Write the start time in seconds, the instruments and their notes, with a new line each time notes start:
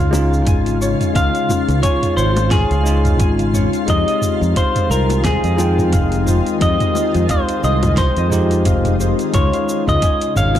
Already playing: ambient pad C#3 F4, tine electric piano G#3 C#4 D#4 F4, harp F4 C#5 G#5
0.00 fingered electric bass C#2, harp F5
0.11 tine electric piano G#3 C#4 D#4 F4, high bongo, cabasa
0.34 cabasa
0.47 fingered electric bass G#1, harp G#5, kick, closed hi-hat, mid tom, cabasa
0.66 closed hi-hat, cabasa
0.81 harp C#5, cabasa
1.01 closed hi-hat, mid tom, cabasa
1.13 fingered electric bass C#2, tine electric piano G#3 C#4 D#4 F4, harp F4, clean electric guitar F5, kick, closed hi-hat, cabasa
1.35 harp F5, closed hi-hat, cabasa
1.49 mid tom, high bongo, cabasa
1.68 fingered electric bass C#2, closed hi-hat, cabasa
1.83 clean electric guitar C#5, harp G#5, kick, closed hi-hat, cabasa
2.03 closed hi-hat, mid tom, cabasa
2.17 fingered electric bass G#1, clean electric guitar C5, harp C#5, cabasa
2.36 closed hi-hat, high bongo, cabasa
2.51 harp F4, clean electric guitar G#4, kick, snare, closed hi-hat, mid tom, cabasa
2.71 fingered electric bass C#2, harp F5, closed hi-hat, cabasa
2.84 tine electric piano G#3 C#4 D#4 F4, cabasa
3.05 closed hi-hat, mid tom, cabasa
3.20 fingered electric bass G#1, harp G#5, kick, closed hi-hat, cabasa
3.39 closed hi-hat, cabasa
3.54 harp C#5, mid tom, cabasa
3.73 closed hi-hat, cabasa
3.86 fingered electric bass F2, ambient pad D#3 G#3, tine electric piano G#3 C4 D#4 F4 G4, harp D#4, clean electric guitar D#5, kick, closed hi-hat, cabasa
4.08 harp D#5, closed hi-hat, cabasa
4.22 mid tom, cabasa
4.41 fingered electric bass F2, cabasa
4.56 clean electric guitar C5, harp F5, kick, closed hi-hat, cabasa
4.76 closed hi-hat, mid tom, cabasa
4.90 fingered electric bass C2, clean electric guitar A#4, harp C5, cabasa
5.10 closed hi-hat, high bongo, cabasa
5.25 harp D#4, clean electric guitar G#4, kick, snare, closed hi-hat, mid tom, cabasa
5.44 fingered electric bass F2, harp D#5, closed hi-hat, cabasa
5.57 tine electric piano G#3 C4 D#4 F4 G5, high bongo, cabasa
5.78 mid tom, cabasa
5.93 fingered electric bass F1, harp F5, kick, closed hi-hat, cabasa
6.12 closed hi-hat, cabasa
6.27 harp C5, mid tom, cabasa
6.47 closed hi-hat, cabasa
6.59 fingered electric bass F2, tine electric piano G#3 C4 D#4 F4 G4, harp D#4, clean electric guitar D#5, kick, closed hi-hat, cabasa
6.80 harp D#5, closed hi-hat, mid tom, cabasa
6.95 high bongo, cabasa
7.14 fingered electric bass F2, closed hi-hat, cabasa
7.29 clean electric guitar C5, harp F5, kick, closed hi-hat, mid tom, cabasa
7.49 closed hi-hat, cabasa
7.63 fingered electric bass C2, harp C5, clean electric guitar D#5, cabasa
7.83 closed hi-hat, mid tom, high bongo, cabasa
7.97 harp D#4, clean electric guitar C5, kick, snare, closed hi-hat, cabasa
8.17 fingered electric bass F2, harp D#5, closed hi-hat, cabasa
8.30 tine electric piano G#3 C4 D#4 F4 G4, mid tom, cabasa
8.51 closed hi-hat, cabasa
8.65 fingered electric bass F1, harp F5, kick, closed hi-hat, cabasa
8.85 closed hi-hat, mid tom, cabasa
9.00 harp C5, cabasa
9.19 closed hi-hat, cabasa
9.32 fingered electric bass C#2, ambient pad C#3, tine electric piano G#3 C#4 D#4 F4, harp F4, clean electric guitar C#5, kick, closed hi-hat, mid tom, cabasa
9.53 harp F5, closed hi-hat, cabasa
9.69 cabasa
9.87 fingered electric bass C#2, clean electric guitar D#5, mid tom, cabasa
10.02 harp G#5, kick, closed hi-hat, cabasa
10.21 closed hi-hat, cabasa
10.36 fingered electric bass G#1, harp C#5, clean electric guitar F5, mid tom, cabasa
10.55 closed hi-hat, high bongo